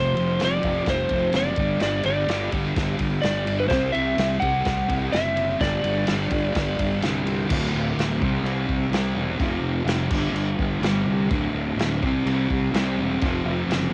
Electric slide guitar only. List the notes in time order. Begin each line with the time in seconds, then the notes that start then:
Already playing: C5
0.45 D5
0.90 C5
1.36 D5
1.83 D5
2.06 D5
3.22 D5
3.60 B4
3.68 C5
3.92 E5
4.40 F#5
5.12 E5
5.61 D5